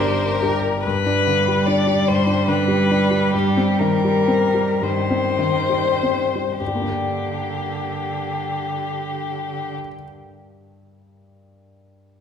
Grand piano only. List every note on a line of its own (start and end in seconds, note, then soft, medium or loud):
0.00 0.87 G1 soft
0.00 0.87 G2 soft
0.00 0.42 G3 soft
0.00 0.43 D4 soft
0.00 0.43 A#4 soft
0.42 0.81 G3 soft
0.42 0.81 D4 soft
0.42 0.81 A#4 soft
0.87 2.08 G2 soft
1.06 1.39 D4 soft
1.27 1.59 D3 soft
1.48 1.79 G3 soft
1.68 1.99 D4 soft
1.87 2.19 G3 soft
2.09 3.31 G2 soft
2.27 2.59 D4 soft
2.48 2.81 D3 soft
2.68 3.02 G3 soft
2.91 3.25 D4 soft
3.11 3.33 G3 soft
3.34 4.80 G2 soft
3.57 3.95 C4 soft
3.81 4.19 D#3 soft
4.04 4.44 G3 soft
4.28 4.70 C4 soft
4.54 4.97 G3 soft
4.82 6.56 G2 soft
5.10 5.57 C4 soft
5.39 5.89 D#3 soft
5.69 6.21 G3 soft
6.03 6.50 C4 soft
6.35 6.61 G3 soft
6.60 9.74 G2 soft
6.67 9.81 G3 soft
6.75 9.88 A#3 soft
6.82 9.95 D4 soft
6.89 10.03 A#4 soft